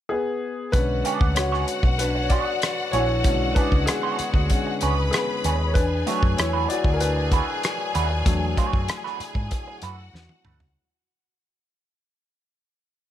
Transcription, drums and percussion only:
0.73 kick, closed hi-hat
1.05 closed hi-hat
1.21 kick
1.36 cross-stick, closed hi-hat
1.54 cross-stick
1.68 closed hi-hat
1.83 kick
1.99 closed hi-hat
2.30 kick, closed hi-hat
2.62 cross-stick, closed hi-hat
2.93 closed hi-hat
3.24 kick, closed hi-hat
3.56 kick, closed hi-hat
3.72 kick
3.87 cross-stick, closed hi-hat
4.19 closed hi-hat
4.34 kick
4.50 kick, closed hi-hat
4.81 closed hi-hat
5.13 cross-stick, closed hi-hat
5.44 closed hi-hat
5.75 kick, closed hi-hat
6.07 closed hi-hat
6.23 kick
6.38 cross-stick, closed hi-hat
6.70 closed hi-hat
6.84 kick
7.00 closed hi-hat
7.32 kick, closed hi-hat
7.63 cross-stick, closed hi-hat
7.95 closed hi-hat
8.26 kick, closed hi-hat
8.57 kick, closed hi-hat
8.73 kick
8.88 cross-stick, closed hi-hat
9.07 cross-stick
9.20 closed hi-hat
9.35 kick
9.51 kick, closed hi-hat
9.82 closed hi-hat
10.15 snare
10.29 high tom
10.45 mid tom
10.60 floor tom

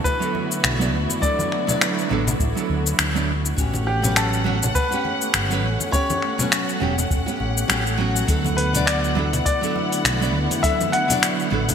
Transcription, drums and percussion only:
0.05 kick, shaker
0.22 shaker
0.35 high conga
0.51 shaker
0.64 finger snap, shaker
0.81 shaker
1.10 high conga, shaker
1.22 kick, shaker
1.39 high conga, shaker
1.52 finger snap
1.69 low conga, shaker
1.81 finger snap, shaker
1.98 shaker
2.11 high conga
2.27 low conga, shaker
2.40 kick, shaker
2.57 shaker
2.86 shaker
2.99 finger snap, shaker
3.16 shaker
3.45 shaker
3.58 kick, shaker
3.74 high conga, shaker
4.03 low conga, shaker
4.16 finger snap, shaker
4.33 shaker
4.46 high conga
4.63 low conga, shaker
4.75 kick, shaker
4.92 shaker
5.05 high conga
5.21 shaker
5.34 finger snap, shaker
5.51 shaker
5.80 high conga, shaker
5.93 kick, shaker
6.10 high conga, shaker
6.22 finger snap
6.39 low conga, shaker
6.52 finger snap, shaker
6.69 shaker
6.82 high conga
6.98 low conga, shaker
7.11 kick, shaker
7.28 shaker
7.40 high conga
7.57 shaker
7.70 finger snap, shaker
7.87 shaker
8.16 shaker
8.28 kick, open hi-hat, shaker
8.45 high conga, shaker
8.58 open hi-hat
8.75 open hi-hat, low conga, shaker
8.87 finger snap, open hi-hat, shaker
9.04 shaker
9.17 high conga
9.33 open hi-hat, low conga, shaker
9.46 kick, open hi-hat, shaker
9.63 shaker
9.76 high conga
9.92 open hi-hat, shaker
10.05 finger snap, open hi-hat, shaker
10.22 shaker
10.51 open hi-hat, high conga, shaker
10.64 kick, open hi-hat, shaker
10.81 high conga, shaker
10.93 finger snap, open hi-hat
11.10 open hi-hat, low conga, shaker
11.23 finger snap, open hi-hat, shaker
11.40 shaker
11.51 high conga
11.69 open hi-hat, low conga, shaker

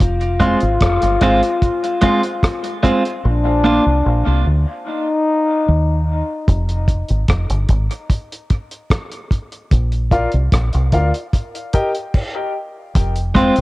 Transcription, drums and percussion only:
0.00 kick, closed hi-hat
0.21 closed hi-hat
0.40 kick, closed hi-hat
0.60 closed hi-hat
0.81 kick, cross-stick, closed hi-hat
1.02 closed hi-hat
1.21 kick, closed hi-hat
1.43 closed hi-hat
1.62 kick, closed hi-hat
1.84 closed hi-hat
2.02 kick, closed hi-hat
2.23 closed hi-hat
2.43 kick, cross-stick, closed hi-hat
2.64 closed hi-hat
2.84 kick, closed hi-hat
3.05 closed hi-hat
6.48 kick, closed hi-hat
6.69 closed hi-hat
6.88 kick, closed hi-hat
7.08 closed hi-hat
7.28 kick, cross-stick, closed hi-hat
7.50 closed hi-hat
7.69 kick, closed hi-hat
7.91 closed hi-hat
8.10 kick, closed hi-hat
8.32 closed hi-hat
8.50 kick, closed hi-hat
8.71 closed hi-hat
8.90 kick, cross-stick, closed hi-hat
9.12 closed hi-hat
9.31 kick, closed hi-hat
9.52 closed hi-hat
9.71 kick, closed hi-hat
9.92 closed hi-hat
10.11 kick, closed hi-hat
10.32 closed hi-hat
10.52 kick, cross-stick, closed hi-hat
10.73 closed hi-hat
10.92 kick, closed hi-hat
11.14 closed hi-hat
11.33 kick, closed hi-hat
11.55 closed hi-hat
11.73 kick, closed hi-hat
11.95 closed hi-hat
12.14 kick, crash
12.95 kick, closed hi-hat
13.16 closed hi-hat
13.35 kick, closed hi-hat
13.56 closed hi-hat

